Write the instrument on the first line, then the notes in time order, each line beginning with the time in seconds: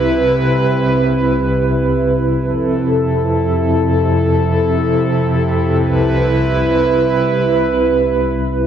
ambient pad
Already playing: C2 C3 E4 B4
2.40 F2 C3 A4
5.78 C2 E4 B4